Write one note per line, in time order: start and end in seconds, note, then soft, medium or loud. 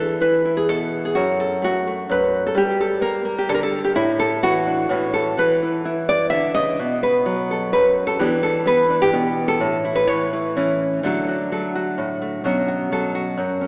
0.00 1.16 E3 medium
0.00 0.21 A4 medium
0.21 0.44 E4 medium
0.21 0.57 B4 medium
0.45 1.13 E4 soft
0.57 0.69 G#4 medium
0.69 1.16 B2 medium
0.69 1.04 A4 medium
1.05 1.16 G#4 medium
1.15 2.08 F#2 medium
1.15 1.62 F#4 medium
1.40 2.09 A4 medium
1.62 1.87 A3 medium
1.62 2.56 F#4 medium
1.87 3.96 A3 soft
2.09 2.56 F#2 medium
2.09 2.45 B4 medium
2.47 2.57 A4 medium
2.55 3.92 G3 medium
2.55 2.80 G4 medium
2.81 3.02 A4 medium
3.01 3.24 A#3 medium
3.01 3.37 A#4 medium
3.25 3.93 A#3 soft
3.38 3.49 G4 medium
3.49 3.93 D3 medium
3.49 3.54 A4 medium
3.54 3.62 A#4 medium
3.63 3.84 A4 medium
3.85 3.95 G4 medium
3.95 4.87 A2 medium
3.95 4.66 E4 medium
4.19 4.43 A4 medium
4.43 4.89 E3 medium
4.43 5.13 F#4 medium
4.67 4.88 D4 soft
4.89 5.34 A2 medium
4.89 5.36 E3 soft
4.89 5.35 C#4 soft
4.89 5.35 E4 soft
5.14 5.37 A4 medium
5.37 6.79 E3 medium
5.37 6.56 B4 medium
5.63 5.84 E4 soft
5.85 6.76 E4 medium
6.09 6.29 D5 loud
6.30 6.55 D3 medium
6.30 6.54 E5 loud
6.55 6.79 C#3 medium
6.55 7.02 D#5 loud
6.79 7.73 B2 medium
7.03 7.49 B4 medium
7.26 8.16 F#3 medium
7.51 7.72 A4 soft
7.73 8.20 F#2 medium
7.73 8.06 B4 medium
8.07 8.20 A4 medium
8.19 10.06 E3 medium
8.19 8.64 B3 soft
8.19 8.89 D4 medium
8.19 8.42 G4 medium
8.43 8.66 A4 medium
8.66 9.57 B3 medium
8.66 9.01 B4 loud
8.90 9.57 D4 soft
9.02 9.48 G4 loud
9.13 9.60 B2 medium
9.48 9.95 A4 medium
9.60 11.00 A2 medium
9.85 10.31 E4 medium
9.96 10.07 B4 loud
10.07 10.55 E3 medium
10.07 11.03 C#5 loud
10.33 11.01 E4 soft
10.56 11.00 E3 medium
10.56 11.01 C#4 medium
11.03 12.42 D3 medium
11.03 11.51 F#3 medium
11.03 12.20 A3 medium
11.03 11.28 F#4 medium
11.03 11.51 A4 medium
11.28 11.75 F#4 medium
11.52 12.42 F#3 medium
11.52 12.42 A4 soft
11.75 12.42 F#4 soft
11.98 12.41 A2 medium
12.22 12.44 A3 soft
12.44 13.38 B2 medium
12.44 12.91 F#3 medium
12.44 13.60 C#4 medium
12.44 12.67 F#4 medium
12.68 12.91 F#4 medium
12.92 13.67 F#3 medium
12.92 13.15 A4 medium
13.15 13.67 F#4 medium
13.37 13.67 F#2 medium
13.61 13.67 C#4 medium